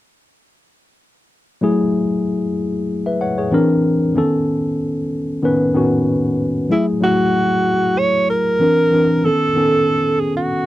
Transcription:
1.61 2.45 F#3 medium
1.61 2.45 A3 medium
1.61 2.46 E4 medium
1.61 2.46 G#4 medium
3.06 3.21 B4 soft
3.06 3.20 E5 medium
3.21 3.37 C#5 medium
3.21 3.37 F#5 medium
3.38 3.69 G#4 soft
3.38 3.68 C#5 medium
3.51 4.04 E3 medium
3.51 4.04 C4 medium
3.51 4.05 D4 medium
3.51 4.05 A#4 medium
4.15 4.99 D#3 medium
4.15 4.99 B3 medium
4.15 5.00 C#4 medium
4.15 5.00 A4 medium
5.42 5.64 D#3 medium
5.42 5.65 B3 medium
5.42 5.65 C#4 medium
5.42 5.66 B4 medium
5.74 6.36 D#3 medium
5.74 6.37 B3 medium
5.74 6.37 C#4 medium
5.74 6.38 F#4 medium
6.69 6.91 F#3 medium
6.69 6.92 A3 medium
6.69 6.92 E4 soft
6.69 6.86 E4 medium
6.69 6.93 G#4 medium
7.00 7.84 F#3 medium
7.00 7.85 A3 medium
7.00 7.85 E4 medium
7.00 7.86 F#4 medium
7.00 8.00 F#4 medium
7.98 8.29 C#5 medium
8.30 9.27 A#4 medium
8.59 8.86 E3 medium
8.59 8.87 C4 medium
8.59 8.87 D4 medium
8.59 8.88 A#4 medium
8.92 9.14 E3 medium
8.92 9.14 C4 medium
8.92 9.15 D4 medium
8.92 9.15 A#4 medium
9.23 9.45 D#3 medium
9.23 9.46 B3 medium
9.23 9.46 C#4 medium
9.23 10.21 A4 medium
9.23 9.47 A4 medium
9.55 10.39 D#3 medium
9.55 10.39 B3 medium
9.55 10.40 C#4 medium
9.55 10.40 A4 medium
10.20 10.36 G#4 medium
10.37 10.66 F#4 medium

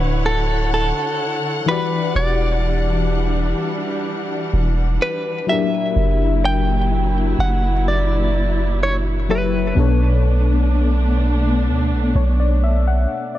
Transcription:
0.00 0.92 D1 loud
0.00 1.63 D3 medium
0.00 1.64 D3 medium
0.00 1.63 D4 medium
0.00 1.64 E4 medium
0.00 1.65 F#4 medium
0.00 0.26 B4 medium
0.00 1.64 C#5 medium
0.00 1.65 C#5 medium
0.00 5.44 F#5 medium
0.26 0.70 A4 medium
0.74 1.68 A4 medium
1.66 5.44 E3 medium
1.66 5.45 E3 medium
1.66 5.45 G3 medium
1.66 5.45 D4 medium
1.66 5.44 E4 medium
1.66 5.45 F#4 medium
1.66 5.46 G4 medium
1.66 2.16 B4 medium
1.71 5.46 D5 medium
2.16 3.54 E1 loud
2.16 5.10 D5 medium
4.53 4.99 E1 loud
5.02 5.46 B4 loud
5.47 9.73 A#2 medium
5.47 9.25 F#3 medium
5.47 9.73 F#3 medium
5.47 9.73 E4 medium
5.47 9.25 E4 medium
5.47 9.26 G4 medium
5.47 9.26 A#4 medium
5.47 6.45 E5 loud
5.52 9.27 D4 medium
5.96 7.35 F#1 loud
6.45 7.40 G5 loud
7.39 9.73 F#1 loud
7.39 7.88 F#5 loud
7.88 8.79 D5 loud
8.83 8.96 C#5 loud
9.29 9.77 F#3 medium
9.29 9.77 E4 soft
9.29 9.77 G4 soft
9.29 10.21 B4 medium
9.29 9.78 C#5 soft
9.29 9.78 E5 medium
9.75 11.69 B1 loud
9.75 13.39 B2 medium
9.75 13.39 A3 medium
9.75 13.39 B3 medium
9.75 13.39 D4 medium
9.75 13.39 A4 medium
9.80 12.13 C#5 medium
11.68 11.93 D2 loud
11.92 12.14 B1 loud
12.15 13.07 B1 loud
12.15 12.38 C#5 medium
12.40 12.62 D5 medium
12.64 12.86 E5 medium
12.88 13.32 F#5 medium
13.35 13.39 D5 medium

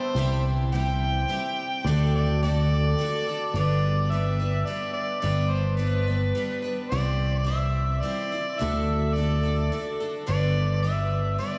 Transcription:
0.00 0.16 G3 medium
0.00 0.17 B3 medium
0.00 0.17 D4 medium
0.00 0.17 G4 medium
0.00 0.43 C5 loud
0.15 1.24 C2 medium
0.15 0.72 C3 medium
0.15 0.71 G3 medium
0.15 0.73 C4 medium
0.19 0.73 E4 medium
0.19 0.73 G4 medium
0.72 1.27 G3 medium
0.72 1.28 C4 medium
0.72 1.30 E4 medium
0.72 1.30 G4 medium
0.72 1.88 G5 loud
1.28 1.84 G3 medium
1.28 1.85 C4 medium
1.28 1.86 E4 medium
1.28 1.86 G4 medium
1.84 2.93 D2 medium
1.84 2.42 D3 medium
1.84 2.42 A3 medium
1.84 2.42 D4 medium
1.84 2.42 F#4 medium
1.84 2.13 D5 loud
1.89 2.43 A4 medium
2.15 2.41 D5 medium
2.43 2.97 A3 medium
2.43 2.99 D4 medium
2.43 2.99 F#4 medium
2.43 2.99 A4 medium
2.43 3.51 D5 loud
2.99 3.26 A3 medium
2.99 3.26 D4 medium
2.99 3.27 F#4 medium
2.99 3.26 A4 medium
3.27 3.55 D4 soft
3.27 3.55 F#4 medium
3.27 3.54 A4 medium
3.54 4.62 G1 medium
3.54 4.10 G2 medium
3.54 4.11 D3 medium
3.54 4.11 G3 medium
3.54 4.11 B3 medium
3.54 4.11 D4 medium
3.54 4.11 B4 medium
3.54 4.12 D5 medium
4.10 4.39 G3 medium
4.10 4.39 B3 medium
4.10 4.40 D4 medium
4.10 4.38 B4 medium
4.10 4.65 E5 loud
4.40 4.66 G3 soft
4.40 4.66 B3 soft
4.40 4.68 D4 soft
4.40 4.67 B4 soft
4.65 5.23 G3 medium
4.65 5.22 B3 medium
4.65 5.22 D4 medium
4.65 4.92 D5 medium
4.70 5.23 B4 medium
4.93 5.19 D5 medium
5.20 6.31 G1 medium
5.20 5.78 G2 medium
5.20 5.78 D3 medium
5.20 5.77 G3 medium
5.20 5.77 B3 medium
5.20 5.78 D4 medium
5.20 5.52 D5 medium
5.25 5.78 B4 medium
5.50 5.78 C5 medium
5.76 6.06 G3 medium
5.76 6.06 B3 medium
5.76 6.07 D4 medium
5.76 6.62 B4 medium
5.76 6.06 B4 medium
6.07 6.34 G3 soft
6.07 6.34 B3 soft
6.07 6.35 D4 soft
6.07 6.35 B4 soft
6.35 6.63 G3 medium
6.35 6.63 B3 medium
6.35 6.63 D4 medium
6.35 6.61 B4 medium
6.62 6.91 G3 soft
6.62 6.92 B3 soft
6.62 6.91 D4 soft
6.62 6.91 B4 soft
6.89 8.00 C2 medium
6.89 7.48 C3 medium
6.89 7.43 G3 medium
6.89 7.45 C4 medium
6.89 7.46 E4 medium
6.89 7.47 C5 medium
6.89 7.42 D5 loud
7.44 8.01 G3 medium
7.44 8.02 C4 medium
7.44 8.03 E4 medium
7.44 8.04 C5 medium
7.44 8.02 E5 loud
8.01 8.31 G3 medium
8.01 8.32 C4 medium
8.01 8.61 D5 loud
8.05 8.32 E4 medium
8.05 8.31 C5 medium
8.32 8.60 C4 soft
8.32 8.61 E4 soft
8.32 8.60 C5 soft
8.59 9.69 D2 medium
8.59 9.16 D3 medium
8.59 9.15 A3 medium
8.59 9.16 D4 medium
8.59 9.17 F#4 medium
8.59 9.17 A4 medium
8.59 9.15 E5 loud
9.14 9.44 A3 medium
9.14 9.44 D4 medium
9.14 9.99 D5 medium
9.18 9.44 F#4 medium
9.18 9.42 A4 medium
9.43 9.72 D4 soft
9.43 9.72 F#4 soft
9.43 9.72 A4 soft
9.72 10.00 A3 medium
9.72 10.01 D4 medium
9.72 10.01 F#4 medium
9.72 9.99 A4 medium
10.00 10.27 D4 soft
10.00 10.28 F#4 soft
10.00 10.28 A4 medium
10.27 11.37 G1 medium
10.27 10.84 G2 medium
10.27 10.84 D3 medium
10.27 10.82 G3 medium
10.27 10.83 B3 medium
10.27 10.84 D4 medium
10.27 10.85 B4 medium
10.27 10.80 D5 loud
10.82 11.38 G3 medium
10.82 11.39 B3 medium
10.82 11.39 D4 medium
10.82 11.40 B4 medium
10.82 11.36 E5 loud
11.38 11.58 G3 medium
11.38 11.58 B3 medium
11.38 11.58 D4 medium
11.38 11.58 B4 medium
11.38 11.58 D5 medium

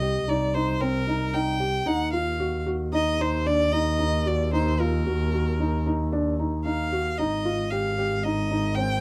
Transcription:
0.00 1.88 C2 medium
0.00 0.21 G4 medium
0.00 0.30 D#5 medium
0.28 0.48 D#4 medium
0.28 0.56 D5 medium
0.54 0.75 D#4 medium
0.54 0.82 C5 medium
0.81 1.01 C4 medium
0.81 1.35 A#4 medium
1.07 1.28 D#4 medium
1.34 1.54 D#4 medium
1.34 1.89 G5 medium
1.60 1.80 G4 medium
1.86 7.20 D#2 medium
1.86 2.07 D#4 medium
1.86 2.12 F#5 medium
2.12 2.34 F4 medium
2.12 2.62 F5 medium
2.40 2.60 F#4 medium
2.66 2.87 F#4 medium
2.92 3.13 D#4 medium
2.92 3.22 D#5 medium
3.19 3.40 D#4 medium
3.19 3.48 C5 medium
3.46 3.67 D4 medium
3.46 3.74 D5 medium
3.72 3.93 D#4 medium
3.72 4.28 D#5 medium
3.99 4.20 D#4 medium
4.26 4.47 F#4 medium
4.26 4.52 D5 medium
4.53 4.73 D#4 medium
4.53 4.82 C5 medium
4.80 5.00 F4 medium
4.80 5.86 A#4 medium
5.06 5.27 F#4 medium
5.33 5.53 F#4 medium
5.60 5.80 D#4 medium
5.86 6.06 D#4 medium
6.12 6.33 D4 medium
6.39 6.59 D#4 medium
6.65 6.86 D#4 medium
6.65 7.19 F5 medium
6.92 7.12 F#4 medium
7.18 9.01 G#1 medium
7.18 7.39 D#4 medium
7.18 7.72 D#5 medium
7.45 7.65 F4 medium
7.70 7.92 G4 medium
7.70 8.25 F5 medium
7.98 8.18 G4 medium
8.23 8.45 D#4 medium
8.23 8.77 D#5 medium
8.51 8.71 D#4 medium
8.75 8.97 C4 medium
8.75 9.01 G5 medium

